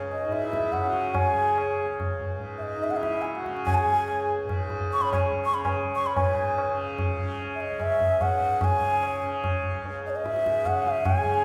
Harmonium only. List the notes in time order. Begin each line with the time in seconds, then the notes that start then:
0.22 D#4
0.43 E4
0.85 F#4
1.26 G#4
2.73 D#4
2.95 E4
3.06 E4
3.36 F#4
3.78 G#4
3.90 G#4
5.02 C#5
5.22 G#4
5.54 C#5
5.62 B4 C#5
5.74 G#4
5.80 G#4
6.06 C#5
6.17 B4
11.18 G#4